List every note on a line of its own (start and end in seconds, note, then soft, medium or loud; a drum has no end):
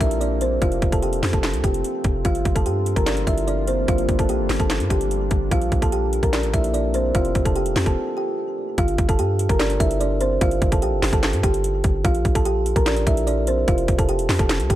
0.00 0.59 A#1 loud
0.00 0.60 A#3 medium
0.00 0.60 C4 medium
0.00 0.58 D4 medium
0.00 0.17 E4 medium
0.00 0.17 E5 medium
0.00 kick loud
0.00 closed hi-hat medium
0.11 closed hi-hat medium
0.21 0.38 D4 medium
0.21 0.37 D5 medium
0.21 closed hi-hat medium
0.41 0.58 C4 medium
0.41 0.58 C5 medium
0.41 closed hi-hat medium
0.62 0.81 F1 loud
0.62 2.23 A3 medium
0.62 2.23 C4 medium
0.62 0.90 F4 loud
0.62 5.47 F4 medium
0.62 0.91 F5 medium
0.62 kick loud
0.62 closed hi-hat medium
0.72 closed hi-hat soft
0.82 1.14 F1 loud
0.82 kick medium
0.82 closed hi-hat medium
0.92 1.01 A4 medium
0.92 1.01 A5 medium
0.92 kick medium
0.92 closed hi-hat medium
1.02 1.31 G4 medium
1.02 1.32 G5 medium
1.02 closed hi-hat medium
1.13 1.22 E1 loud
1.13 closed hi-hat medium
1.23 1.32 F2 loud
1.23 snare loud
1.23 clap medium
1.23 open hi-hat medium
1.33 1.55 F1 loud
1.33 1.62 A4 medium
1.33 1.62 A5 medium
1.33 kick medium
1.33 closed hi-hat medium
1.43 snare loud
1.43 clap medium
1.43 closed hi-hat medium
1.54 1.63 C2 loud
1.54 closed hi-hat medium
1.64 1.83 F1 loud
1.64 2.21 G4 medium
1.64 2.22 G5 medium
1.64 kick loud
1.64 closed hi-hat medium
1.74 closed hi-hat medium
1.84 closed hi-hat medium
2.04 2.24 F1 loud
2.04 kick loud
2.04 closed hi-hat medium
2.25 2.45 G1 loud
2.25 5.48 G3 medium
2.25 5.48 A#3 medium
2.25 7.11 D4 medium
2.25 2.54 F4 loud
2.25 2.54 F5 medium
2.25 kick loud
2.25 closed hi-hat medium
2.35 closed hi-hat soft
2.45 2.67 G1 loud
2.45 kick medium
2.45 closed hi-hat medium
2.56 2.64 A4 medium
2.56 2.64 A5 medium
2.56 kick medium
2.56 closed hi-hat medium
2.66 2.95 G2 loud
2.66 2.95 G4 medium
2.66 2.95 G5 medium
2.66 closed hi-hat medium
2.86 closed hi-hat medium
2.96 3.26 G1 loud
2.96 3.05 A#4 medium
2.96 3.05 A#5 medium
2.96 kick medium
2.96 closed hi-hat medium
3.06 3.24 D4 medium
3.06 3.23 D5 medium
3.06 snare loud
3.06 clap medium
3.06 closed hi-hat medium
3.17 closed hi-hat medium
3.27 3.86 G1 loud
3.27 3.44 E4 medium
3.27 3.44 E5 medium
3.27 kick loud
3.27 closed hi-hat medium
3.38 closed hi-hat medium
3.47 3.64 D4 medium
3.47 3.64 D5 medium
3.47 closed hi-hat medium
3.67 3.85 C4 medium
3.67 3.84 C5 medium
3.67 closed hi-hat medium
3.88 4.08 G1 loud
3.88 4.17 F4 loud
3.88 4.17 F5 medium
3.88 kick loud
3.88 closed hi-hat medium
3.98 closed hi-hat soft
4.09 4.31 G1 loud
4.09 kick medium
4.09 closed hi-hat medium
4.19 4.27 A4 medium
4.19 4.28 A5 medium
4.19 kick medium
4.19 closed hi-hat medium
4.29 4.41 A#1 loud
4.29 4.58 G4 medium
4.29 4.58 G5 medium
4.29 closed hi-hat medium
4.39 4.49 G1 loud
4.49 4.59 G1 loud
4.49 snare loud
4.49 clap medium
4.49 open hi-hat medium
4.60 4.82 G1 loud
4.60 4.88 A4 medium
4.60 4.89 A5 medium
4.60 kick loud
4.60 closed hi-hat medium
4.70 snare loud
4.70 clap medium
4.70 closed hi-hat medium
4.80 4.90 G2 loud
4.80 closed hi-hat medium
4.90 5.29 G1 loud
4.90 5.48 G4 medium
4.90 5.48 G5 medium
4.90 kick loud
4.90 closed hi-hat medium
5.01 closed hi-hat medium
5.11 closed hi-hat medium
5.31 5.51 G1 loud
5.31 kick loud
5.31 closed hi-hat medium
5.51 5.71 A#1 loud
5.51 7.13 A#3 medium
5.51 8.75 C4 medium
5.51 5.80 F4 loud
5.51 5.81 F5 medium
5.51 kick loud
5.51 closed hi-hat medium
5.62 closed hi-hat soft
5.72 6.21 A#1 loud
5.72 kick medium
5.72 closed hi-hat medium
5.82 5.90 A4 medium
5.82 5.91 A5 medium
5.82 kick medium
5.82 closed hi-hat medium
5.92 6.21 G4 medium
5.92 6.22 G5 medium
5.92 closed hi-hat medium
6.13 closed hi-hat medium
6.23 6.45 A#1 loud
6.23 6.31 A#4 medium
6.23 6.32 A#5 medium
6.23 kick medium
6.23 closed hi-hat medium
6.33 6.50 D4 medium
6.33 6.50 D5 medium
6.33 snare loud
6.33 clap medium
6.33 closed hi-hat medium
6.43 6.53 A1 loud
6.43 closed hi-hat medium
6.54 7.12 A#1 loud
6.54 6.71 E4 medium
6.54 6.70 E5 medium
6.54 kick loud
6.54 closed hi-hat medium
6.64 closed hi-hat medium
6.74 6.91 D4 medium
6.74 6.90 D5 medium
6.74 closed hi-hat medium
6.94 7.11 C4 medium
6.94 7.11 C5 medium
6.94 closed hi-hat medium
7.15 7.34 F1 loud
7.15 8.76 A3 medium
7.15 7.44 F4 loud
7.15 8.76 F4 medium
7.15 7.44 F5 medium
7.15 kick loud
7.15 closed hi-hat medium
7.25 closed hi-hat soft
7.35 7.67 F1 loud
7.35 kick medium
7.35 closed hi-hat medium
7.45 7.54 A4 medium
7.45 7.54 A5 medium
7.45 kick medium
7.45 closed hi-hat medium
7.56 7.84 G4 medium
7.56 7.85 G5 medium
7.56 closed hi-hat medium
7.66 7.75 E1 loud
7.66 closed hi-hat medium
7.76 7.86 F2 loud
7.76 snare loud
7.76 clap medium
7.76 open hi-hat medium
7.86 7.96 F1 loud
7.86 8.15 A4 medium
7.86 8.15 A5 medium
7.86 kick loud
7.86 closed hi-hat soft
8.17 8.74 G4 medium
8.17 8.75 G5 medium
8.78 8.98 G1 loud
8.78 9.07 F4 loud
8.78 9.07 F5 medium
8.78 kick loud
8.78 closed hi-hat medium
8.88 closed hi-hat medium
8.98 9.20 G1 loud
8.98 kick medium
8.98 closed hi-hat medium
9.09 9.17 A4 medium
9.09 9.17 A5 medium
9.09 kick medium
9.09 closed hi-hat medium
9.19 9.48 G2 loud
9.19 9.48 G4 medium
9.19 9.48 G5 medium
9.19 closed hi-hat medium
9.39 closed hi-hat medium
9.49 9.79 G1 loud
9.49 9.58 A#4 medium
9.49 9.58 A#5 medium
9.49 kick loud
9.49 closed hi-hat medium
9.60 9.77 D4 medium
9.60 9.76 D5 medium
9.60 snare loud
9.60 clap medium
9.60 closed hi-hat medium
9.70 closed hi-hat medium
9.80 10.39 G1 loud
9.80 9.97 E4 medium
9.80 9.97 E5 medium
9.80 kick loud
9.80 closed hi-hat medium
9.91 closed hi-hat medium
10.01 10.17 D4 medium
10.01 10.17 D5 medium
10.01 closed hi-hat medium
10.21 10.38 C4 medium
10.21 10.37 C5 medium
10.21 closed hi-hat medium
10.41 10.61 G1 loud
10.41 10.70 F4 loud
10.41 10.71 F5 medium
10.41 kick loud
10.41 closed hi-hat medium
10.51 closed hi-hat medium
10.62 10.84 G1 loud
10.62 kick medium
10.62 closed hi-hat medium
10.72 10.80 A4 medium
10.72 10.81 A5 medium
10.72 kick medium
10.72 closed hi-hat medium
10.82 10.94 A#1 loud
10.82 11.11 G4 medium
10.82 11.11 G5 medium
10.82 closed hi-hat medium
10.92 11.02 G1 loud
11.02 11.12 G1 loud
11.02 snare loud
11.02 clap medium
11.02 open hi-hat medium
11.13 11.35 G1 loud
11.13 11.42 A4 medium
11.13 11.42 A5 medium
11.13 kick loud
11.13 closed hi-hat medium
11.23 snare loud
11.23 clap medium
11.23 closed hi-hat medium
11.33 11.43 G2 loud
11.33 closed hi-hat medium
11.43 11.83 G1 loud
11.43 12.01 G4 medium
11.43 12.01 G5 medium
11.43 kick loud
11.43 closed hi-hat medium
11.54 closed hi-hat medium
11.64 closed hi-hat medium
11.84 12.04 G1 loud
11.84 kick loud
11.84 closed hi-hat medium
12.05 12.24 A#1 loud
12.05 12.33 F4 loud
12.05 12.34 F5 medium
12.05 kick loud
12.05 closed hi-hat medium
12.15 closed hi-hat soft
12.25 12.74 A#1 loud
12.25 kick medium
12.25 closed hi-hat medium
12.35 12.43 A4 medium
12.35 12.44 A5 medium
12.35 kick medium
12.35 closed hi-hat medium
12.45 12.74 G4 medium
12.45 12.75 G5 medium
12.45 closed hi-hat medium
12.66 closed hi-hat medium
12.76 12.98 A#1 loud
12.76 12.84 A#4 medium
12.76 12.85 A#5 medium
12.76 kick loud
12.76 closed hi-hat medium
12.86 13.03 D4 medium
12.86 13.03 D5 medium
12.86 snare loud
12.86 clap medium
12.86 closed hi-hat medium
12.96 13.06 A1 loud
12.96 closed hi-hat medium
13.07 13.65 A#1 loud
13.07 13.24 E4 medium
13.07 13.23 E5 medium
13.07 kick loud
13.07 closed hi-hat medium
13.17 closed hi-hat medium
13.27 13.44 D4 medium
13.27 13.44 D5 medium
13.27 closed hi-hat medium
13.47 13.65 C4 medium
13.47 13.64 C5 medium
13.47 closed hi-hat medium
13.68 13.87 F1 loud
13.68 13.97 F4 loud
13.68 13.97 F5 medium
13.68 kick loud
13.68 closed hi-hat medium
13.78 closed hi-hat soft
13.88 14.20 F1 loud
13.88 kick medium
13.88 closed hi-hat medium
13.99 14.07 A4 medium
13.99 14.07 A5 medium
13.99 kick loud
13.99 closed hi-hat medium
14.09 14.37 G4 medium
14.09 14.38 G5 medium
14.09 closed hi-hat medium
14.19 14.29 E1 loud
14.19 closed hi-hat medium
14.29 14.39 F2 loud
14.29 snare loud
14.29 clap medium
14.29 open hi-hat medium
14.39 14.61 F1 loud
14.39 14.68 A4 medium
14.39 14.68 A5 medium
14.39 kick loud
14.39 closed hi-hat medium
14.49 snare loud
14.49 clap medium
14.49 closed hi-hat medium
14.60 14.69 C2 loud
14.60 closed hi-hat medium
14.70 14.76 F1 loud
14.70 14.76 G4 medium
14.70 14.76 G5 medium
14.70 kick loud
14.70 closed hi-hat medium